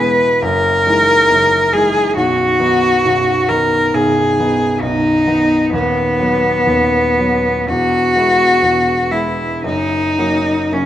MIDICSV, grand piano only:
0, 0, Header, 1, 2, 480
1, 0, Start_track
1, 0, Key_signature, 5, "major"
1, 0, Tempo, 872093
1, 1193, Time_signature, 4, 2, 24, 8
1, 1675, Tempo, 895522
1, 3115, Tempo, 940439
1, 3595, Tempo, 1015228
1, 4075, Tempo, 931677
1, 4555, Tempo, 1016949
1, 5035, Tempo, 1084991
1, 5576, End_track
2, 0, Start_track
2, 0, Title_t, "Grand piano"
2, 0, Program_c, 0, 0
2, 0, Control_c, 0, 64, 127
2, 0, Note_on_c, 0, 28, 55
2, 0, Note_on_c, 0, 40, 50
2, 0, Note_on_c, 0, 52, 44
2, 0, Note_on_c, 0, 56, 43
2, 0, Note_on_c, 0, 59, 45
2, 213, Note_off_c, 0, 52, 0
2, 215, Note_off_c, 0, 56, 0
2, 217, Note_off_c, 0, 59, 0
2, 231, Note_on_c, 0, 30, 56
2, 233, Note_on_c, 0, 42, 63
2, 245, Control_c, 0, 64, 0
2, 249, Note_off_c, 0, 28, 0
2, 250, Note_off_c, 0, 40, 0
2, 345, Control_c, 0, 64, 127
2, 469, Note_off_c, 0, 30, 0
2, 470, Note_off_c, 0, 42, 0
2, 473, Note_on_c, 0, 52, 46
2, 478, Note_on_c, 0, 56, 49
2, 479, Note_on_c, 0, 63, 51
2, 696, Note_off_c, 0, 52, 0
2, 698, Note_off_c, 0, 56, 0
2, 699, Note_off_c, 0, 63, 0
2, 717, Note_on_c, 0, 30, 52
2, 718, Note_on_c, 0, 42, 55
2, 950, Note_off_c, 0, 30, 0
2, 950, Note_off_c, 0, 42, 0
2, 958, Note_on_c, 0, 52, 45
2, 959, Note_on_c, 0, 56, 47
2, 962, Note_on_c, 0, 63, 52
2, 1170, Note_off_c, 0, 52, 0
2, 1171, Note_off_c, 0, 56, 0
2, 1172, Note_off_c, 0, 63, 0
2, 1192, Note_on_c, 0, 35, 58
2, 1193, Note_on_c, 0, 23, 51
2, 1200, Control_c, 0, 64, 0
2, 1281, Control_c, 0, 64, 127
2, 1422, Note_off_c, 0, 35, 0
2, 1423, Note_off_c, 0, 23, 0
2, 1427, Note_on_c, 0, 51, 49
2, 1429, Note_on_c, 0, 59, 49
2, 1431, Note_on_c, 0, 63, 53
2, 1652, Note_off_c, 0, 51, 0
2, 1653, Note_off_c, 0, 59, 0
2, 1654, Note_off_c, 0, 63, 0
2, 1677, Note_on_c, 0, 35, 54
2, 1678, Note_on_c, 0, 23, 54
2, 1912, Note_off_c, 0, 23, 0
2, 1912, Note_off_c, 0, 35, 0
2, 1917, Note_on_c, 0, 51, 46
2, 1922, Note_on_c, 0, 59, 44
2, 1922, Note_on_c, 0, 63, 49
2, 2137, Note_off_c, 0, 51, 0
2, 2140, Note_off_c, 0, 59, 0
2, 2140, Note_off_c, 0, 63, 0
2, 2156, Note_on_c, 0, 23, 60
2, 2156, Note_on_c, 0, 35, 55
2, 2387, Note_off_c, 0, 23, 0
2, 2387, Note_off_c, 0, 35, 0
2, 2396, Note_on_c, 0, 51, 48
2, 2400, Note_on_c, 0, 63, 51
2, 2401, Note_on_c, 0, 59, 48
2, 2609, Note_off_c, 0, 51, 0
2, 2611, Note_off_c, 0, 63, 0
2, 2612, Note_off_c, 0, 59, 0
2, 2628, Note_on_c, 0, 23, 57
2, 2632, Note_on_c, 0, 35, 52
2, 2861, Note_off_c, 0, 23, 0
2, 2863, Note_off_c, 0, 35, 0
2, 2869, Note_on_c, 0, 51, 45
2, 2871, Note_on_c, 0, 59, 46
2, 2874, Note_on_c, 0, 63, 47
2, 3093, Note_off_c, 0, 51, 0
2, 3094, Note_off_c, 0, 59, 0
2, 3095, Note_off_c, 0, 63, 0
2, 3112, Note_on_c, 0, 27, 54
2, 3113, Note_on_c, 0, 39, 61
2, 3122, Control_c, 0, 64, 0
2, 3211, Control_c, 0, 64, 127
2, 3343, Note_off_c, 0, 27, 0
2, 3344, Note_off_c, 0, 39, 0
2, 3352, Note_on_c, 0, 54, 44
2, 3353, Note_on_c, 0, 59, 52
2, 3574, Note_off_c, 0, 54, 0
2, 3574, Note_off_c, 0, 59, 0
2, 3593, Note_on_c, 0, 39, 51
2, 3596, Note_on_c, 0, 27, 54
2, 3827, Note_off_c, 0, 39, 0
2, 3828, Note_off_c, 0, 27, 0
2, 3838, Note_on_c, 0, 54, 42
2, 3841, Note_on_c, 0, 59, 45
2, 4057, Note_off_c, 0, 54, 0
2, 4059, Note_off_c, 0, 59, 0
2, 4079, Note_on_c, 0, 28, 54
2, 4080, Note_on_c, 0, 40, 60
2, 4084, Control_c, 0, 64, 0
2, 4167, Control_c, 0, 64, 127
2, 4311, Note_off_c, 0, 28, 0
2, 4312, Note_off_c, 0, 40, 0
2, 4317, Note_on_c, 0, 56, 42
2, 4320, Note_on_c, 0, 59, 43
2, 4322, Note_on_c, 0, 64, 50
2, 4535, Note_off_c, 0, 56, 0
2, 4536, Note_off_c, 0, 59, 0
2, 4537, Note_off_c, 0, 64, 0
2, 4558, Note_on_c, 0, 28, 51
2, 4559, Note_on_c, 0, 40, 51
2, 4782, Note_off_c, 0, 28, 0
2, 4782, Note_off_c, 0, 40, 0
2, 4788, Note_on_c, 0, 56, 42
2, 4790, Note_on_c, 0, 59, 42
2, 4792, Note_on_c, 0, 64, 46
2, 5016, Note_off_c, 0, 56, 0
2, 5017, Note_off_c, 0, 59, 0
2, 5018, Note_off_c, 0, 64, 0
2, 5037, Note_on_c, 0, 42, 55
2, 5038, Note_on_c, 0, 30, 47
2, 5044, Control_c, 0, 64, 0
2, 5120, Control_c, 0, 64, 127
2, 5269, Note_off_c, 0, 42, 0
2, 5270, Note_off_c, 0, 30, 0
2, 5278, Note_on_c, 0, 54, 45
2, 5280, Note_on_c, 0, 58, 43
2, 5281, Note_on_c, 0, 61, 47
2, 5499, Note_off_c, 0, 54, 0
2, 5500, Note_off_c, 0, 58, 0
2, 5500, Note_off_c, 0, 61, 0
2, 5516, Note_on_c, 0, 30, 48
2, 5516, Note_on_c, 0, 42, 46
2, 5576, Note_off_c, 0, 30, 0
2, 5576, Note_off_c, 0, 42, 0
2, 5576, End_track
0, 0, End_of_file